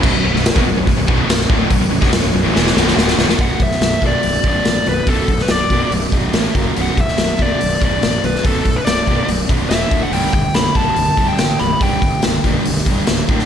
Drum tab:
CC |x---------------|----------------|----------------|----------------|
HH |----o---o---o---|o---o-----------|o-o-o-o-o-o-o-o-|o-o-o-o-o-o-o-o-|
SD |---oo-------oo--|---oo---oooooooo|---oo-------o---|---oo-------o---|
BD |o----o--o-o---o-|o--o------------|o-o---o---o-----|o-o---o---o---o-|

CC |----------------|----------------|----------------|----------------|
HH |o-o-o-o-o-o-o-o-|o-o-o-o-o-o-o-o-|o-o-o-o-o-o-o-o-|o-o-o-o-o-o-o-o-|
SD |---oo-------o--o|----o-------o---|----o-------o---|----o-------o--o|
BD |--o---o---o-----|o-o---o---o---o-|--o---o---o-----|o-o---o---o---o-|